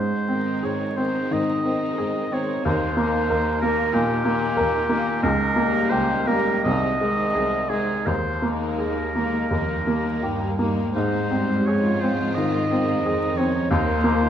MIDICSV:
0, 0, Header, 1, 6, 480
1, 0, Start_track
1, 0, Key_signature, -4, "major"
1, 0, Tempo, 691244
1, 1392, Tempo, 651466
1, 1875, Time_signature, 4, 2, 24, 8
1, 4272, Tempo, 744417
1, 4752, Tempo, 715137
1, 8112, Tempo, 683371
1, 9072, Tempo, 652884
1, 10000, End_track
2, 0, Start_track
2, 0, Title_t, "Oboe"
2, 0, Program_c, 0, 68
2, 0, Note_on_c, 0, 72, 43
2, 449, Note_on_c, 0, 73, 36
2, 459, Note_off_c, 0, 72, 0
2, 673, Note_on_c, 0, 72, 39
2, 683, Note_off_c, 0, 73, 0
2, 920, Note_on_c, 0, 75, 41
2, 931, Note_off_c, 0, 72, 0
2, 1632, Note_on_c, 0, 73, 39
2, 1643, Note_off_c, 0, 75, 0
2, 1868, Note_off_c, 0, 73, 0
2, 1872, Note_on_c, 0, 72, 48
2, 2569, Note_off_c, 0, 72, 0
2, 2577, Note_on_c, 0, 70, 49
2, 2811, Note_on_c, 0, 67, 49
2, 2822, Note_off_c, 0, 70, 0
2, 3763, Note_off_c, 0, 67, 0
2, 3767, Note_on_c, 0, 70, 63
2, 4259, Note_on_c, 0, 72, 50
2, 4270, Note_off_c, 0, 70, 0
2, 4502, Note_on_c, 0, 70, 48
2, 4512, Note_off_c, 0, 72, 0
2, 4736, Note_off_c, 0, 70, 0
2, 4740, Note_on_c, 0, 75, 55
2, 5448, Note_on_c, 0, 68, 42
2, 5458, Note_off_c, 0, 75, 0
2, 5692, Note_on_c, 0, 72, 46
2, 5702, Note_off_c, 0, 68, 0
2, 6015, Note_off_c, 0, 72, 0
2, 6177, Note_on_c, 0, 70, 34
2, 7355, Note_off_c, 0, 70, 0
2, 7624, Note_on_c, 0, 72, 45
2, 8109, Note_on_c, 0, 73, 41
2, 8119, Note_off_c, 0, 72, 0
2, 8355, Note_on_c, 0, 72, 42
2, 8366, Note_off_c, 0, 73, 0
2, 8591, Note_on_c, 0, 75, 46
2, 8601, Note_off_c, 0, 72, 0
2, 9322, Note_on_c, 0, 73, 44
2, 9333, Note_off_c, 0, 75, 0
2, 9561, Note_off_c, 0, 73, 0
2, 9564, Note_on_c, 0, 72, 58
2, 10000, Note_off_c, 0, 72, 0
2, 10000, End_track
3, 0, Start_track
3, 0, Title_t, "Violin section"
3, 0, Program_c, 1, 48
3, 192, Note_on_c, 1, 60, 25
3, 194, Note_on_c, 1, 63, 21
3, 676, Note_off_c, 1, 63, 0
3, 677, Note_off_c, 1, 60, 0
3, 684, Note_on_c, 1, 63, 25
3, 689, Note_on_c, 1, 60, 24
3, 1138, Note_off_c, 1, 63, 0
3, 1139, Note_off_c, 1, 60, 0
3, 1146, Note_on_c, 1, 63, 27
3, 1147, Note_on_c, 1, 60, 26
3, 1606, Note_off_c, 1, 60, 0
3, 1611, Note_off_c, 1, 63, 0
3, 1615, Note_on_c, 1, 60, 23
3, 1620, Note_on_c, 1, 63, 23
3, 1845, Note_off_c, 1, 63, 0
3, 1852, Note_on_c, 1, 58, 28
3, 1854, Note_on_c, 1, 63, 24
3, 1859, Note_off_c, 1, 60, 0
3, 2094, Note_off_c, 1, 58, 0
3, 2095, Note_off_c, 1, 63, 0
3, 2104, Note_on_c, 1, 58, 27
3, 2107, Note_on_c, 1, 63, 25
3, 2550, Note_off_c, 1, 63, 0
3, 2553, Note_off_c, 1, 58, 0
3, 2559, Note_on_c, 1, 63, 32
3, 2561, Note_on_c, 1, 58, 31
3, 3031, Note_off_c, 1, 58, 0
3, 3031, Note_off_c, 1, 63, 0
3, 3040, Note_on_c, 1, 58, 34
3, 3040, Note_on_c, 1, 63, 34
3, 3512, Note_off_c, 1, 63, 0
3, 3514, Note_off_c, 1, 58, 0
3, 3521, Note_on_c, 1, 63, 30
3, 3522, Note_on_c, 1, 58, 29
3, 3765, Note_off_c, 1, 63, 0
3, 3766, Note_off_c, 1, 58, 0
3, 4002, Note_on_c, 1, 58, 33
3, 4002, Note_on_c, 1, 63, 32
3, 4486, Note_off_c, 1, 63, 0
3, 4487, Note_off_c, 1, 58, 0
3, 4494, Note_on_c, 1, 63, 31
3, 4495, Note_on_c, 1, 58, 28
3, 4731, Note_off_c, 1, 63, 0
3, 4738, Note_on_c, 1, 63, 31
3, 4739, Note_on_c, 1, 60, 27
3, 4740, Note_off_c, 1, 58, 0
3, 4974, Note_off_c, 1, 63, 0
3, 4976, Note_off_c, 1, 60, 0
3, 4982, Note_on_c, 1, 63, 29
3, 4987, Note_on_c, 1, 60, 31
3, 5443, Note_off_c, 1, 63, 0
3, 5444, Note_off_c, 1, 60, 0
3, 5451, Note_on_c, 1, 63, 23
3, 5452, Note_on_c, 1, 60, 23
3, 5697, Note_off_c, 1, 60, 0
3, 5697, Note_off_c, 1, 63, 0
3, 5938, Note_on_c, 1, 58, 26
3, 5941, Note_on_c, 1, 63, 23
3, 6418, Note_off_c, 1, 58, 0
3, 6419, Note_off_c, 1, 63, 0
3, 6430, Note_on_c, 1, 63, 23
3, 6431, Note_on_c, 1, 58, 21
3, 6663, Note_off_c, 1, 58, 0
3, 6663, Note_off_c, 1, 63, 0
3, 6671, Note_on_c, 1, 58, 22
3, 6671, Note_on_c, 1, 63, 23
3, 6905, Note_off_c, 1, 58, 0
3, 6905, Note_off_c, 1, 63, 0
3, 6912, Note_on_c, 1, 58, 23
3, 6913, Note_on_c, 1, 63, 25
3, 7379, Note_off_c, 1, 58, 0
3, 7380, Note_off_c, 1, 63, 0
3, 7389, Note_on_c, 1, 63, 22
3, 7393, Note_on_c, 1, 58, 21
3, 7614, Note_off_c, 1, 63, 0
3, 7622, Note_on_c, 1, 63, 27
3, 7625, Note_off_c, 1, 63, 0
3, 7625, Note_on_c, 1, 63, 26
3, 7629, Note_off_c, 1, 58, 0
3, 8083, Note_off_c, 1, 63, 0
3, 8106, Note_on_c, 1, 61, 30
3, 8111, Note_on_c, 1, 65, 34
3, 8593, Note_off_c, 1, 61, 0
3, 8608, Note_on_c, 1, 60, 32
3, 8830, Note_on_c, 1, 58, 38
3, 8841, Note_off_c, 1, 60, 0
3, 9071, Note_off_c, 1, 58, 0
3, 9072, Note_off_c, 1, 65, 0
3, 9077, Note_on_c, 1, 63, 34
3, 9081, Note_on_c, 1, 60, 34
3, 9318, Note_on_c, 1, 61, 33
3, 9323, Note_off_c, 1, 60, 0
3, 9556, Note_off_c, 1, 63, 0
3, 9559, Note_off_c, 1, 61, 0
3, 9565, Note_on_c, 1, 63, 29
3, 9569, Note_off_c, 1, 63, 0
3, 9569, Note_on_c, 1, 63, 33
3, 10000, Note_off_c, 1, 63, 0
3, 10000, End_track
4, 0, Start_track
4, 0, Title_t, "Grand piano"
4, 0, Program_c, 2, 0
4, 0, Note_on_c, 2, 44, 31
4, 86, Control_c, 2, 64, 127
4, 197, Note_on_c, 2, 60, 26
4, 436, Note_on_c, 2, 68, 23
4, 593, Note_off_c, 2, 60, 0
4, 677, Note_on_c, 2, 60, 23
4, 829, Note_off_c, 2, 68, 0
4, 898, Note_off_c, 2, 44, 0
4, 910, Note_on_c, 2, 51, 24
4, 1063, Note_off_c, 2, 60, 0
4, 1146, Note_on_c, 2, 60, 21
4, 1292, Note_off_c, 2, 51, 0
4, 1372, Note_on_c, 2, 68, 27
4, 1531, Note_off_c, 2, 60, 0
4, 1624, Note_on_c, 2, 60, 29
4, 1769, Note_off_c, 2, 68, 0
4, 1869, Note_off_c, 2, 60, 0
4, 1869, Note_on_c, 2, 39, 40
4, 1889, Control_c, 2, 64, 0
4, 2004, Control_c, 2, 64, 127
4, 2102, Note_on_c, 2, 58, 32
4, 2346, Note_on_c, 2, 70, 29
4, 2486, Note_off_c, 2, 58, 0
4, 2587, Note_on_c, 2, 58, 26
4, 2725, Note_off_c, 2, 70, 0
4, 2788, Note_off_c, 2, 39, 0
4, 2811, Note_on_c, 2, 46, 34
4, 2963, Note_off_c, 2, 58, 0
4, 3045, Note_on_c, 2, 58, 31
4, 3198, Note_off_c, 2, 46, 0
4, 3281, Note_on_c, 2, 70, 31
4, 3438, Note_off_c, 2, 58, 0
4, 3520, Note_on_c, 2, 58, 34
4, 3674, Note_off_c, 2, 70, 0
4, 3769, Note_off_c, 2, 58, 0
4, 3769, Note_on_c, 2, 37, 47
4, 3791, Control_c, 2, 64, 0
4, 3909, Control_c, 2, 64, 127
4, 4012, Note_on_c, 2, 58, 36
4, 4272, Note_on_c, 2, 67, 35
4, 4407, Note_off_c, 2, 58, 0
4, 4504, Note_on_c, 2, 58, 31
4, 4657, Note_off_c, 2, 67, 0
4, 4722, Note_off_c, 2, 37, 0
4, 4750, Note_off_c, 2, 58, 0
4, 4752, Note_on_c, 2, 36, 37
4, 4766, Control_c, 2, 64, 0
4, 4892, Control_c, 2, 64, 127
4, 4988, Note_on_c, 2, 56, 31
4, 5215, Note_on_c, 2, 68, 32
4, 5361, Note_off_c, 2, 56, 0
4, 5449, Note_on_c, 2, 56, 28
4, 5605, Note_off_c, 2, 68, 0
4, 5678, Note_off_c, 2, 36, 0
4, 5694, Note_on_c, 2, 39, 32
4, 5701, Note_off_c, 2, 56, 0
4, 5720, Control_c, 2, 64, 0
4, 5848, Control_c, 2, 64, 127
4, 5936, Note_on_c, 2, 58, 24
4, 6178, Note_on_c, 2, 68, 23
4, 6330, Note_off_c, 2, 58, 0
4, 6428, Note_on_c, 2, 58, 20
4, 6572, Note_off_c, 2, 68, 0
4, 6641, Note_off_c, 2, 39, 0
4, 6663, Note_on_c, 2, 39, 29
4, 6671, Note_off_c, 2, 58, 0
4, 6686, Control_c, 2, 64, 0
4, 6814, Control_c, 2, 64, 127
4, 6908, Note_on_c, 2, 58, 22
4, 7147, Note_on_c, 2, 67, 23
4, 7290, Note_off_c, 2, 58, 0
4, 7391, Note_on_c, 2, 58, 26
4, 7534, Note_off_c, 2, 67, 0
4, 7599, Note_off_c, 2, 39, 0
4, 7632, Note_off_c, 2, 58, 0
4, 7641, Note_on_c, 2, 44, 38
4, 7645, Control_c, 2, 64, 0
4, 7748, Control_c, 2, 64, 127
4, 7875, Note_on_c, 2, 60, 28
4, 8119, Note_on_c, 2, 68, 29
4, 8261, Note_off_c, 2, 60, 0
4, 8371, Note_on_c, 2, 60, 26
4, 8504, Note_off_c, 2, 68, 0
4, 8573, Note_off_c, 2, 44, 0
4, 8612, Note_on_c, 2, 51, 32
4, 8746, Note_off_c, 2, 60, 0
4, 8850, Note_on_c, 2, 60, 29
4, 8986, Note_off_c, 2, 51, 0
4, 9092, Note_on_c, 2, 68, 28
4, 9229, Note_off_c, 2, 60, 0
4, 9335, Note_on_c, 2, 60, 34
4, 9473, Note_off_c, 2, 68, 0
4, 9568, Note_off_c, 2, 60, 0
4, 9570, Note_on_c, 2, 39, 47
4, 9572, Control_c, 2, 64, 0
4, 9706, Control_c, 2, 64, 127
4, 9814, Note_on_c, 2, 58, 36
4, 10000, Note_off_c, 2, 39, 0
4, 10000, Note_off_c, 2, 58, 0
4, 10000, End_track
5, 0, Start_track
5, 0, Title_t, "Viola section"
5, 0, Program_c, 3, 48
5, 195, Note_on_c, 3, 51, 25
5, 195, Note_on_c, 3, 56, 25
5, 674, Note_off_c, 3, 51, 0
5, 676, Note_off_c, 3, 56, 0
5, 682, Note_on_c, 3, 51, 25
5, 684, Note_on_c, 3, 56, 24
5, 1149, Note_off_c, 3, 51, 0
5, 1150, Note_off_c, 3, 56, 0
5, 1163, Note_on_c, 3, 56, 28
5, 1166, Note_on_c, 3, 51, 26
5, 1627, Note_off_c, 3, 56, 0
5, 1628, Note_off_c, 3, 51, 0
5, 1638, Note_on_c, 3, 51, 29
5, 1639, Note_on_c, 3, 56, 27
5, 1866, Note_off_c, 3, 51, 0
5, 1872, Note_off_c, 3, 56, 0
5, 1874, Note_on_c, 3, 51, 29
5, 1875, Note_on_c, 3, 58, 27
5, 2101, Note_off_c, 3, 51, 0
5, 2102, Note_off_c, 3, 58, 0
5, 2110, Note_on_c, 3, 51, 29
5, 2111, Note_on_c, 3, 58, 28
5, 2575, Note_off_c, 3, 51, 0
5, 2575, Note_off_c, 3, 58, 0
5, 2583, Note_on_c, 3, 58, 33
5, 2584, Note_on_c, 3, 51, 35
5, 3047, Note_off_c, 3, 58, 0
5, 3048, Note_off_c, 3, 51, 0
5, 3056, Note_on_c, 3, 51, 34
5, 3056, Note_on_c, 3, 58, 35
5, 3526, Note_off_c, 3, 58, 0
5, 3530, Note_off_c, 3, 51, 0
5, 3535, Note_on_c, 3, 58, 35
5, 3539, Note_on_c, 3, 51, 37
5, 3772, Note_off_c, 3, 58, 0
5, 3774, Note_off_c, 3, 51, 0
5, 4020, Note_on_c, 3, 55, 34
5, 4020, Note_on_c, 3, 58, 37
5, 4498, Note_off_c, 3, 55, 0
5, 4499, Note_off_c, 3, 58, 0
5, 4506, Note_on_c, 3, 55, 33
5, 4509, Note_on_c, 3, 58, 30
5, 4746, Note_off_c, 3, 55, 0
5, 4747, Note_off_c, 3, 58, 0
5, 4750, Note_on_c, 3, 56, 30
5, 4753, Note_on_c, 3, 51, 31
5, 4981, Note_off_c, 3, 56, 0
5, 4982, Note_off_c, 3, 51, 0
5, 4989, Note_on_c, 3, 56, 28
5, 4990, Note_on_c, 3, 51, 31
5, 5443, Note_off_c, 3, 56, 0
5, 5444, Note_off_c, 3, 51, 0
5, 5451, Note_on_c, 3, 56, 26
5, 5452, Note_on_c, 3, 51, 28
5, 5697, Note_off_c, 3, 51, 0
5, 5697, Note_off_c, 3, 56, 0
5, 5941, Note_on_c, 3, 51, 27
5, 5941, Note_on_c, 3, 56, 26
5, 6419, Note_off_c, 3, 51, 0
5, 6419, Note_off_c, 3, 56, 0
5, 6429, Note_on_c, 3, 51, 23
5, 6429, Note_on_c, 3, 56, 24
5, 6665, Note_off_c, 3, 51, 0
5, 6667, Note_off_c, 3, 56, 0
5, 6672, Note_on_c, 3, 55, 25
5, 6673, Note_on_c, 3, 51, 25
5, 6899, Note_off_c, 3, 55, 0
5, 6900, Note_off_c, 3, 51, 0
5, 6907, Note_on_c, 3, 55, 23
5, 6908, Note_on_c, 3, 51, 23
5, 7377, Note_off_c, 3, 55, 0
5, 7378, Note_off_c, 3, 51, 0
5, 7389, Note_on_c, 3, 51, 24
5, 7391, Note_on_c, 3, 55, 22
5, 7627, Note_off_c, 3, 51, 0
5, 7627, Note_off_c, 3, 55, 0
5, 7637, Note_on_c, 3, 56, 33
5, 7638, Note_on_c, 3, 60, 30
5, 7860, Note_off_c, 3, 56, 0
5, 7877, Note_on_c, 3, 55, 37
5, 8090, Note_off_c, 3, 60, 0
5, 8115, Note_off_c, 3, 55, 0
5, 8119, Note_on_c, 3, 56, 34
5, 8123, Note_on_c, 3, 53, 31
5, 8601, Note_off_c, 3, 53, 0
5, 8602, Note_on_c, 3, 51, 35
5, 9553, Note_off_c, 3, 51, 0
5, 9559, Note_on_c, 3, 58, 38
5, 9561, Note_on_c, 3, 51, 38
5, 9562, Note_off_c, 3, 56, 0
5, 9793, Note_off_c, 3, 51, 0
5, 9800, Note_on_c, 3, 53, 45
5, 10000, Note_off_c, 3, 53, 0
5, 10000, Note_off_c, 3, 58, 0
5, 10000, End_track
6, 0, Start_track
6, 0, Title_t, "Cello section"
6, 0, Program_c, 4, 48
6, 0, Note_on_c, 4, 44, 34
6, 373, Note_off_c, 4, 44, 0
6, 447, Note_on_c, 4, 44, 31
6, 854, Note_off_c, 4, 44, 0
6, 929, Note_on_c, 4, 44, 34
6, 1319, Note_off_c, 4, 44, 0
6, 1392, Note_on_c, 4, 44, 35
6, 1798, Note_off_c, 4, 44, 0
6, 1873, Note_on_c, 4, 39, 40
6, 2270, Note_off_c, 4, 39, 0
6, 2350, Note_on_c, 4, 39, 43
6, 2745, Note_off_c, 4, 39, 0
6, 2823, Note_on_c, 4, 39, 42
6, 3223, Note_off_c, 4, 39, 0
6, 3294, Note_on_c, 4, 39, 46
6, 3699, Note_off_c, 4, 39, 0
6, 3780, Note_on_c, 4, 37, 44
6, 4193, Note_off_c, 4, 37, 0
6, 4275, Note_on_c, 4, 37, 40
6, 4680, Note_off_c, 4, 37, 0
6, 4747, Note_on_c, 4, 36, 40
6, 5142, Note_off_c, 4, 36, 0
6, 5211, Note_on_c, 4, 36, 39
6, 5625, Note_off_c, 4, 36, 0
6, 5699, Note_on_c, 4, 39, 34
6, 6112, Note_off_c, 4, 39, 0
6, 6181, Note_on_c, 4, 39, 28
6, 6642, Note_off_c, 4, 39, 0
6, 6673, Note_on_c, 4, 41, 28
6, 6906, Note_on_c, 4, 39, 29
6, 6910, Note_off_c, 4, 41, 0
6, 7146, Note_off_c, 4, 39, 0
6, 7152, Note_on_c, 4, 43, 34
6, 7633, Note_off_c, 4, 43, 0
6, 7633, Note_on_c, 4, 44, 36
6, 9046, Note_off_c, 4, 44, 0
6, 9077, Note_on_c, 4, 41, 37
6, 9551, Note_off_c, 4, 41, 0
6, 9562, Note_on_c, 4, 39, 43
6, 10000, Note_off_c, 4, 39, 0
6, 10000, End_track
0, 0, End_of_file